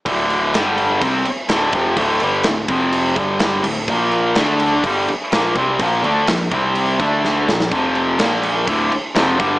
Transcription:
<<
  \new Staff \with { instrumentName = "Distorted electric guitar" } { \clef bass \time 4/4 \key d \minor \tempo 4 = 125 <d, a, d>4 <g, d g>4 <c g c'>8 r8 <d, a, d>8 <f, c f>8 | <d, a, d>8 <g, d g>8 <d, a,>8 <f, c f>4 <g, d g>4 <d, a,>8 | <bes, f bes>4 <d a d'>4 <g, d g>8 r8 <bes, f bes>8 <c g c'>8 | <bes, f bes>8 <d a d'>8 <bes, f>8 <c g c'>4 <d a d'>4 <bes, f>8 |
<f, c f>4 <bes, f bes>4 <d, a, d>8 r8 <f, c f>8 <g, d g>8 | }
  \new Staff \with { instrumentName = "Picked electric bass" } { \clef bass \time 4/4 \key d \minor d,,4 g,,4 c,8 r8 d,,8 f,,8 | d,,8 g,,8 d,,8 f,,4 g,,4 d,,8 | bes,,4 d,4 g,,8 r8 bes,,8 c,8 | bes,,8 d,8 bes,,8 c,4 d,4 bes,,8 |
f,,4 bes,,4 d,,8 r8 f,,8 g,,8 | }
  \new DrumStaff \with { instrumentName = "Drums" } \drummode { \time 4/4 <cymc bd>8 cymc8 <cymc sn>8 cymc8 <cymc bd>8 cymc8 <cymc sn>8 <cymc bd>8 | <cymc bd>8 cymc8 <cymc sn>8 <cymc bd>8 cymc8 <cymc bd>8 <cymc sn>8 cymc8 | <cymc bd>8 cymc8 <cymc sn>8 cymc8 <cymc bd>8 cymc8 <cymc sn>8 <cymc bd>8 | <cymc bd>8 cymc8 <cymc sn>8 <cymc bd>8 cymc8 <cymc bd>8 sn8 sn16 sn16 |
<cymc bd>8 cymc8 <cymc sn>8 cymc8 <cymc bd>8 cymc8 <cymc sn>8 <cymc bd>8 | }
>>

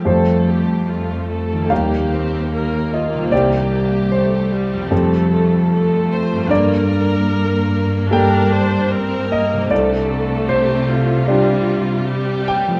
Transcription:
<<
  \new Staff \with { instrumentName = "Viola section" } { \time 4/4 \key f \mixolydian \tempo 4 = 75 << { a'8 g'8 f'8 a'8 g'4 bes'8 f'8 | g'2 a'4 a'8 c''8 | bes'2 bes'8 c''8 bes'4 | a'4 g'8 f'4. g'4 | } \\ { a4 a4 bes8 c'8 bes4~ | bes4 a8 g8 a8 a8 a4 | bes8 bes4. d'4 c'8 bes8 | a2 g4 g4 | } >> }
  \new Staff \with { instrumentName = "Grand piano" } { \time 4/4 \key f \mixolydian c''2 f''4. ees''8 | d''4 c''2~ c''8 r8 | d''2 g''4. ees''8 | d''4 c''2~ c''8 g''8 | }
  \new Staff \with { instrumentName = "Grand piano" } { \clef bass \time 4/4 \key f \mixolydian <f, g a g'>2 <ees, g bes g'>2 | <c, g c' g'>2 <f, g c' a'>2 | g,2 <g bes a'>2 | c,2 <g d' g'>2 | }
  \new Staff \with { instrumentName = "Harp" } { \clef bass \time 4/4 \key f \mixolydian <f g a g'>2 <ees g bes g'>2 | <c g c' g'>2 <f, g c' a'>2 | <g, g bes a'>1 | <c g d' g'>1 | }
  \new Staff \with { instrumentName = "Cello section" } { \clef bass \time 4/4 \key f \mixolydian f,2 ees,2 | c,2 f,2 | g,1 | c1 | }
>>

